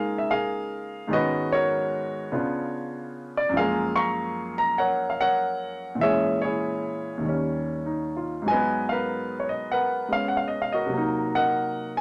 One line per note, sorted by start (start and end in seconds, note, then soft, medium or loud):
0.00 1.09 C#3 medium
0.00 1.09 G#3 soft
0.00 1.10 A#3 medium
0.00 1.11 D#4 soft
0.00 1.11 F4 medium
0.00 0.29 G#4 medium
0.00 0.30 A#4 medium
0.00 0.18 F5 medium
0.18 0.28 E5 medium
0.31 1.07 G#4 medium
0.31 1.08 A#4 medium
0.31 1.14 F5 medium
1.08 2.32 G#2 medium
1.08 2.32 D#3 medium
1.08 2.33 G#3 medium
1.08 2.30 B3 medium
1.12 2.34 C#4 soft
1.12 1.53 F#4 medium
1.12 2.31 B4 medium
1.12 1.54 D#5 medium
1.52 2.31 F#4 medium
1.52 3.33 A#4 medium
1.52 3.32 C#5 medium
2.32 3.55 C#3 medium
2.32 3.55 B3 soft
2.32 3.55 D4 soft
2.32 3.56 F4 medium
3.37 3.55 D5 medium
3.49 5.98 F#2 medium
3.54 6.00 F3 soft
3.54 6.01 G#3 medium
3.54 3.94 F5 loud
3.58 6.03 A#3 medium
3.58 4.75 G#4 medium
3.58 4.76 A#4 medium
3.96 5.08 F5 medium
3.96 4.57 A#5 medium
3.96 4.53 C#6 loud
4.58 4.77 A#5 medium
4.78 5.20 A#4 medium
4.78 5.21 C#5 medium
4.78 5.11 F#5 medium
5.10 5.19 F5 medium
5.21 5.98 A#4 medium
5.21 5.98 C#5 medium
5.21 6.04 F#5 loud
5.95 7.21 A#2 medium
5.95 7.22 E3 soft
6.01 7.24 G#3 soft
6.01 6.43 G#4 medium
6.01 6.40 C#5 medium
6.01 6.39 E5 loud
6.06 7.26 C#4 medium
6.42 7.21 E4 medium
6.42 7.21 G#4 medium
6.42 8.22 C#5 medium
7.18 8.43 D#2 soft
7.18 8.45 D#3 soft
7.25 8.47 G3 soft
7.25 8.49 C#4 medium
7.86 8.33 D#4 soft
8.17 8.59 F4 soft
8.42 10.89 G#2 medium
8.42 10.88 F#3 medium
8.48 8.90 B4 medium
8.48 9.48 D#5 medium
8.48 8.85 G#5 medium
8.53 10.09 B3 medium
8.89 9.72 A#4 medium
8.89 9.72 B4 medium
8.89 9.36 F5 medium
9.40 9.49 C#5 medium
9.49 9.70 D#5 medium
9.72 10.74 A#4 medium
9.72 10.89 B4 medium
9.72 10.08 F#5 medium
10.08 10.91 G#3 soft
10.08 10.92 B3 soft
10.08 10.92 C#4 soft
10.13 10.26 F5 loud
10.28 10.35 F#5 medium
10.37 10.48 F5 medium
10.48 10.59 D#5 medium
10.62 10.72 F5 medium
10.72 11.91 F#4 medium
10.72 11.36 A#4 medium
10.72 11.29 D#5 medium
10.86 12.01 C3 soft
10.86 12.01 F#3 soft
10.94 12.01 A#3 soft
10.98 12.01 D#4 medium
11.35 12.01 A#4 medium
11.35 12.01 D#5 medium
11.35 11.91 F#5 medium
11.97 12.01 G#5 medium